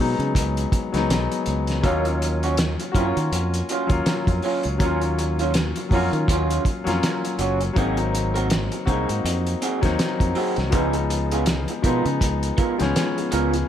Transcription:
Already playing: fingered electric bass B2, grand piano F#3 C4
0.00 grand piano G#3 B3 D#4
0.19 fingered electric bass C#3, closed hi-hat
0.35 fingered electric bass C#2, kick, closed hi-hat
0.57 closed hi-hat
0.72 kick, closed hi-hat
0.92 fingered electric bass C#2, grand piano F#3 G#3 B3 D#4, snare, closed hi-hat
1.09 fingered electric bass B1, snare, closed hi-hat
1.32 closed hi-hat
1.46 fingered electric bass C#2, closed hi-hat
1.67 snare, closed hi-hat
1.82 fingered electric bass D#2, grand piano F#3 A#3 C#4 F4, clean electric guitar F#3 C#4 F4, kick, closed hi-hat
2.05 muted clean electric guitar stroke, closed hi-hat
2.22 muted clean electric guitar stroke, closed hi-hat
2.43 clean electric guitar F#3 C#4 F#4, closed hi-hat
2.57 snare, closed hi-hat
2.80 muted clean electric guitar stroke, closed hi-hat
2.92 fingered electric bass F#2, clean electric guitar F#3, grand piano A#3 C#4 F4 F#4, kick, closed hi-hat
2.97 clean electric guitar C#4 F4
3.17 fingered electric bass D#3, muted clean electric guitar stroke, closed hi-hat
3.32 fingered electric bass F2, muted clean electric guitar stroke, closed hi-hat
3.54 closed hi-hat
3.69 clean electric guitar F#3 C#4 F4, closed hi-hat
3.87 fingered electric bass D#2, grand piano F#3 A#3 C#4 F4, kick, closed hi-hat
4.06 muted fingered electric bass stroke, muted clean electric guitar stroke, snare, closed hi-hat
4.27 fingered electric bass F2, muted clean electric guitar stroke, kick, closed hi-hat
4.42 clean electric guitar F#3 C#4 F4, open hi-hat
4.63 fingered electric bass C#2, muted clean electric guitar stroke, closed hi-hat
4.78 fingered electric bass D#2, grand piano F#3 A#3 C#4 F4, clean electric guitar F#3 C#4, kick, closed hi-hat
4.83 clean electric guitar F4
5.01 muted clean electric guitar stroke, closed hi-hat
5.19 muted clean electric guitar stroke, closed hi-hat
5.39 clean electric guitar F#3 C#4 F4, closed hi-hat
5.54 snare, closed hi-hat
5.76 muted clean electric guitar stroke, closed hi-hat
5.89 fingered electric bass F2, grand piano F#3 A#3 C#4, kick, open hi-hat
5.93 clean electric guitar F#3 C#4 F#4, grand piano F4
6.12 fingered electric bass D#3, muted clean electric guitar stroke, closed hi-hat
6.28 fingered electric bass D#2, clean electric guitar F#3 C#4 F4, kick, closed hi-hat
6.50 closed hi-hat
6.65 muted clean electric guitar stroke, kick, closed hi-hat
6.84 fingered electric bass F2, grand piano F#3 A#3 C#4 F4, muted clean electric guitar stroke, closed hi-hat
6.89 snare
7.03 snare, closed hi-hat
7.24 muted clean electric guitar stroke, closed hi-hat
7.39 fingered electric bass F#1, clean electric guitar F#3 C#4 F#4, closed hi-hat
7.61 muted clean electric guitar stroke, closed hi-hat
7.73 fingered electric bass G#1, grand piano F#3 A#3 C4 D#4, clean electric guitar C4 F#4, kick, closed hi-hat
7.78 clean electric guitar G#4
7.97 muted clean electric guitar stroke, closed hi-hat
8.13 muted clean electric guitar stroke, closed hi-hat
8.34 clean electric guitar C4 F#4 A#4, closed hi-hat
8.50 snare, closed hi-hat
8.72 muted clean electric guitar stroke, closed hi-hat
8.86 fingered electric bass C2, grand piano A#3 C4 D#4 F#4, clean electric guitar C4 F#4 G#4, kick, closed hi-hat
9.09 fingered electric bass G#2, muted clean electric guitar stroke, closed hi-hat
9.24 fingered electric bass F2, muted clean electric guitar stroke, closed hi-hat
9.47 closed hi-hat
9.62 clean electric guitar C4 F#4 G#4, closed hi-hat
9.81 fingered electric bass D#2, grand piano F#3 A#3 C4 D#4, kick, snare, closed hi-hat
9.98 muted clean electric guitar stroke, muted fingered electric bass stroke, snare, closed hi-hat
10.19 fingered electric bass F2, muted clean electric guitar stroke, kick, closed hi-hat
10.35 clean electric guitar C4 F#4 G#4, open hi-hat
10.56 fingered electric bass C2, muted clean electric guitar stroke, snare, closed hi-hat
10.70 fingered electric bass C#2, grand piano F3 G#3 B3 D#4, clean electric guitar B3 F4, kick, closed hi-hat
10.74 clean electric guitar G#4
10.93 muted clean electric guitar stroke, closed hi-hat
11.10 muted clean electric guitar stroke, closed hi-hat
11.31 clean electric guitar B3 F4 G#4, closed hi-hat
11.46 snare, closed hi-hat
11.68 muted clean electric guitar stroke, closed hi-hat
11.82 fingered electric bass B2, grand piano F3 G#3 B3 D#4, clean electric guitar B3 F4 A#4, kick, closed hi-hat
12.05 fingered electric bass C#3, muted clean electric guitar stroke, closed hi-hat
12.21 fingered electric bass C#2, muted clean electric guitar stroke, kick, closed hi-hat
12.43 closed hi-hat
12.57 clean electric guitar B3 F4 A#4, kick, closed hi-hat
12.78 fingered electric bass C#2, grand piano F3 G#3 B3 C#4, muted clean electric guitar stroke, snare, closed hi-hat
12.96 snare, closed hi-hat
13.16 muted clean electric guitar stroke, closed hi-hat
13.31 fingered electric bass C#2, clean electric guitar B3 F4 A#4, closed hi-hat
13.54 muted clean electric guitar stroke, closed hi-hat

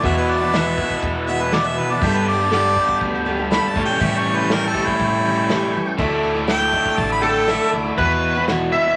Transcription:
0.02 steel-string acoustic guitar E2 B2 E3 B3 E4 F#4, upright bass E2, tonewheel organ B4 F#5 E6, harmonica E5, kick, open hi-hat
0.17 harmonica B4
0.29 harmonica D5, open hi-hat
0.41 steel-string acoustic guitar E3 B3 E4 F#4
0.53 steel-string acoustic guitar E2 B2 E3 B3 E4 F#4, harmonica E5, snare, open hi-hat
0.77 steel-string acoustic guitar E3 B3 E4 F#4, kick, open hi-hat
0.90 kick
1.02 upright bass E2, kick, open hi-hat
1.27 steel-string acoustic guitar E3 B3 E4 F#4, harmonica E5, open hi-hat
1.40 steel-string acoustic guitar E3 B3 E4 F#4, harmonica B4
1.51 steel-string acoustic guitar E2 B2 E3 B3 E4 F#4, harmonica D5, snare, open hi-hat
1.66 harmonica E5
1.76 steel-string acoustic guitar E3 B3 E4 F#4, harmonica B4, open hi-hat
1.90 steel-string acoustic guitar E3 B3 E4 F#4, harmonica D5
2.01 overdriven electric guitar G2 D3 G4, upright bass G2, steel-string acoustic guitar G3 B3 D4 A4, tonewheel organ A4 G5 B5, harmonica E5, kick, open hi-hat
2.16 harmonica B4
2.26 harmonica D5, open hi-hat
2.39 steel-string acoustic guitar B3 D4 A4
2.51 steel-string acoustic guitar G3 B3 D4 A4, harmonica D5, snare, open hi-hat
2.76 steel-string acoustic guitar G3 B3 D4 A4, kick, open hi-hat
2.89 kick
3.01 upright bass D2, kick, open hi-hat
3.15 snare
3.25 steel-string acoustic guitar G3 B3 D4 A4, open hi-hat
3.37 steel-string acoustic guitar B3 D4 A4
3.50 steel-string acoustic guitar G3 B3 D4 A4, harmonica B5, snare, open hi-hat
3.69 harmonica A5
3.74 overdriven electric guitar A2, upright bass A2, steel-string acoustic guitar E3 G3 C#4 G4, tonewheel organ A4 C#6, kick, open hi-hat
3.85 steel-string acoustic guitar G3 C#4 G4, harmonica G5
4.00 steel-string acoustic guitar A2 E3 G3 C#4 G4, upright bass A2, harmonica E5, open hi-hat
4.18 harmonica C#5
4.25 open hi-hat
4.36 steel-string acoustic guitar G3 C#4 G4, harmonica B4
4.50 steel-string acoustic guitar A2 E3 G3 C#4 G4, harmonica A#4, snare, open hi-hat
4.67 harmonica A4
4.74 steel-string acoustic guitar E3 G3 C#4 G4, kick, open hi-hat
4.85 steel-string acoustic guitar G3 C#4 G4, harmonica E4, kick
4.99 upright bass A2, kick, open hi-hat
5.24 steel-string acoustic guitar E3 G3 C#4 G4, open hi-hat
5.49 steel-string acoustic guitar A2 E3 G3 C#4 G4, snare, open hi-hat
5.73 steel-string acoustic guitar E3 G3 C#4 G4, open hi-hat
5.86 steel-string acoustic guitar G3 C#4 G4
5.98 upright bass D2, steel-string acoustic guitar D3 A3 D4 E4, tonewheel organ E5 D6, kick, open hi-hat
6.23 open hi-hat
6.35 steel-string acoustic guitar A3 D4 E4
6.47 steel-string acoustic guitar D3 A3 D4 E4, harmonica G5, snare, open hi-hat
6.72 steel-string acoustic guitar D3 A3 D4 E4, kick, open hi-hat
6.86 kick
6.97 upright bass A1, harmonica A5, kick, open hi-hat
7.12 harmonica B5
7.21 steel-string acoustic guitar D3 A3 D4 E4, lead electric guitar A4, harmonica G5, open hi-hat
7.47 steel-string acoustic guitar D3 A3 D4 E4, harmonica E5, snare, open hi-hat
7.72 upright bass D2, steel-string acoustic guitar D3 A3 D4 E4, open hi-hat
7.85 steel-string acoustic guitar A3 D4 E4
7.98 steel-string acoustic guitar E2 B2 E3 B3 E4 F#4, upright bass E2, lead electric guitar B4, kick, open hi-hat
8.23 open hi-hat
8.35 steel-string acoustic guitar E3 B3 E4 F#4
8.47 steel-string acoustic guitar E2 B2 E3 B3 E4 F#4, snare, open hi-hat
8.72 steel-string acoustic guitar E3 B3 E4, lead electric guitar E5, open hi-hat
8.85 steel-string acoustic guitar E3 B3 E4 F#4

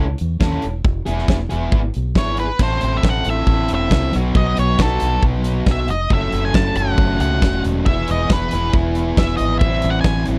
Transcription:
Already playing: fingered electric bass C#2
0.18 fingered electric bass E2, closed hi-hat
0.40 fingered electric bass D#2, distorted electric guitar C#4 E4 A4, kick, snare
0.62 fingered electric bass E1, closed hi-hat
0.84 fingered electric bass E1, kick
1.06 fingered electric bass E1, distorted electric guitar B3 E4 G#4, closed hi-hat
1.19 snare
1.28 fingered electric bass E1, kick, snare
1.50 fingered electric bass E1, distorted electric guitar B3 E4 G#4, closed hi-hat
1.72 fingered electric bass G#1, kick
1.94 fingered electric bass B1, closed hi-hat
2.15 fingered electric bass G#1, distorted electric guitar B3 E4 G#4, lead electric guitar C#5, kick, snare
2.37 lead electric guitar B4, closed hi-hat
2.59 fingered electric bass A1, distorted electric guitar C4 E4 A4, lead electric guitar C5, kick, crash
2.81 fingered electric bass A1, closed hi-hat
2.97 lead electric guitar E5
3.03 fingered electric bass A1, kick, snare
3.09 lead electric guitar F#5
3.25 fingered electric bass A1, distorted electric guitar E4 A4, closed hi-hat
3.29 distorted electric guitar C4, lead electric guitar E5
3.47 fingered electric bass A1, kick
3.69 fingered electric bass E1, closed hi-hat
3.75 lead electric guitar E5
3.91 fingered electric bass C2, kick, snare
4.12 fingered electric bass B1, distorted electric guitar F#3 B3 D#4 F#4, closed hi-hat
4.35 fingered electric bass B1, lead electric guitar D#5, kick
4.57 fingered electric bass B1, lead electric guitar C#5, closed hi-hat
4.79 fingered electric bass B1, distorted electric guitar F#3 B3 D#4 F#4, lead electric guitar A4, kick, snare
5.00 fingered electric bass B1, closed hi-hat
5.23 fingered electric bass B1, kick
5.44 closed hi-hat
5.66 fingered electric bass B1, kick, snare
5.71 lead electric guitar E5
5.88 fingered electric bass F1, lead electric guitar D#5, closed hi-hat
6.10 fingered electric bass F#1, distorted electric guitar F#3 A3 C#4 A4, lead electric guitar E5, kick
6.32 fingered electric bass F#1, closed hi-hat
6.45 lead electric guitar G#5
6.54 fingered electric bass F#1, lead electric guitar A5, kick, snare
6.75 fingered electric bass F#1, distorted electric guitar A3 C#4 A4, lead electric guitar F#5, closed hi-hat
6.80 distorted electric guitar F#3
6.98 fingered electric bass F#1, kick
7.20 fingered electric bass C#2, lead electric guitar F#5, closed hi-hat
7.42 fingered electric bass E1, kick, snare
7.64 fingered electric bass E1, closed hi-hat
7.86 fingered electric bass E1, distorted electric guitar E3 B3 E4, lead electric guitar E5, kick
7.90 distorted electric guitar G#4
8.08 fingered electric bass E1, lead electric guitar D#5, closed hi-hat
8.30 fingered electric bass E1, lead electric guitar B4, kick, snare
8.51 fingered electric bass E1, distorted electric guitar E4 G#4, closed hi-hat
8.55 distorted electric guitar E3 B3
8.73 fingered electric bass E1, kick
8.95 closed hi-hat
9.17 fingered electric bass E1, lead electric guitar E5, kick, snare
9.37 fingered electric bass G#1, lead electric guitar D#5, closed hi-hat
9.59 fingered electric bass A1, distorted electric guitar E3, lead electric guitar E5, kick
9.64 distorted electric guitar C4 E4
9.82 fingered electric bass A1, closed hi-hat
9.90 lead electric guitar F#5
10.01 fingered electric bass A1, lead electric guitar G#5, kick, snare
10.26 fingered electric bass A1, distorted electric guitar C4 E4, closed hi-hat
10.30 distorted electric guitar E3

